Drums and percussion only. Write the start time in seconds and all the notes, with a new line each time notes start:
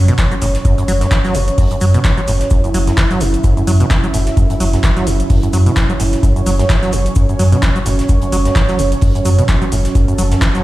0.08 closed hi-hat, cabasa
0.18 kick, snare, clap, closed hi-hat, cabasa, shaker
0.31 closed hi-hat, cabasa
0.42 open hi-hat, cabasa, shaker
0.54 snare, closed hi-hat, cabasa
0.65 kick, closed hi-hat, cabasa, shaker
0.78 closed hi-hat, cabasa
0.88 open hi-hat, cabasa, shaker
1.01 snare, closed hi-hat, cabasa
1.11 kick, snare, clap, closed hi-hat, cabasa, shaker
1.24 snare, closed hi-hat, cabasa
1.34 open hi-hat, cabasa, shaker
1.48 closed hi-hat, cabasa
1.58 kick, closed hi-hat, open hi-hat, cabasa
1.71 closed hi-hat, cabasa
1.80 open hi-hat, cabasa, shaker
1.94 closed hi-hat, cabasa
2.04 kick, snare, clap, closed hi-hat, cabasa, shaker
2.18 closed hi-hat, cabasa
2.27 open hi-hat, cabasa, shaker
2.40 snare, closed hi-hat, cabasa
2.50 kick, closed hi-hat, cabasa, shaker
2.64 closed hi-hat, cabasa
2.74 open hi-hat, cabasa, shaker
2.87 snare, closed hi-hat, cabasa
2.97 kick, snare, clap, closed hi-hat, cabasa, shaker
3.10 snare, closed hi-hat, cabasa
3.20 open hi-hat, cabasa, shaker
3.34 closed hi-hat, cabasa
3.44 kick, closed hi-hat, cabasa, shaker
3.57 closed hi-hat, cabasa
3.67 open hi-hat, cabasa, shaker
3.80 closed hi-hat, cabasa
3.90 kick, snare, clap, closed hi-hat, cabasa, shaker
4.04 closed hi-hat, cabasa
4.14 open hi-hat, cabasa, shaker
4.26 snare, closed hi-hat, cabasa
4.37 kick, closed hi-hat, cabasa, shaker
4.50 closed hi-hat, cabasa
4.60 open hi-hat, cabasa, shaker
4.73 snare, closed hi-hat, cabasa
4.84 kick, snare, clap, closed hi-hat, cabasa, shaker
4.96 snare, closed hi-hat, cabasa
5.07 open hi-hat, cabasa, shaker
5.20 closed hi-hat, cabasa
5.30 kick, closed hi-hat, open hi-hat, cabasa
5.43 closed hi-hat, cabasa
5.53 open hi-hat, cabasa, shaker
5.66 closed hi-hat, cabasa
5.76 kick, snare, clap, closed hi-hat, cabasa, shaker
5.90 closed hi-hat, cabasa
6.00 open hi-hat, cabasa, shaker
6.12 snare, closed hi-hat, cabasa
6.23 kick, closed hi-hat, cabasa, shaker
6.36 closed hi-hat, cabasa
6.46 open hi-hat, cabasa, shaker
6.59 snare, closed hi-hat, cabasa
6.70 kick, snare, clap, closed hi-hat, cabasa, shaker
6.83 snare, closed hi-hat, cabasa
6.92 open hi-hat, cabasa, shaker
7.06 closed hi-hat, cabasa
7.15 kick, closed hi-hat, cabasa, shaker
7.29 closed hi-hat, cabasa
7.39 open hi-hat, cabasa, shaker
7.52 closed hi-hat, cabasa
7.62 kick, snare, clap, closed hi-hat, cabasa, shaker
7.76 closed hi-hat, cabasa
7.86 open hi-hat, cabasa, shaker
7.99 snare, closed hi-hat, cabasa
8.09 kick, closed hi-hat, cabasa, shaker
8.22 closed hi-hat, cabasa
8.32 open hi-hat, cabasa, shaker
8.45 snare, closed hi-hat, cabasa
8.56 kick, snare, clap, closed hi-hat, cabasa, shaker
8.68 snare, closed hi-hat, cabasa
8.79 open hi-hat, cabasa, shaker
8.92 closed hi-hat, cabasa
9.01 kick, closed hi-hat, open hi-hat, cabasa
9.15 closed hi-hat, cabasa
9.25 open hi-hat, cabasa, shaker
9.38 closed hi-hat, cabasa
9.48 kick, snare, clap, closed hi-hat, cabasa, shaker
9.62 closed hi-hat, cabasa
9.72 open hi-hat, cabasa, shaker
9.85 snare, closed hi-hat, cabasa
9.95 kick, closed hi-hat, cabasa, shaker
10.08 closed hi-hat, cabasa
10.18 open hi-hat, cabasa, shaker
10.31 snare, closed hi-hat, cabasa
10.42 kick, snare, clap, closed hi-hat, cabasa, shaker
10.54 snare, closed hi-hat, cabasa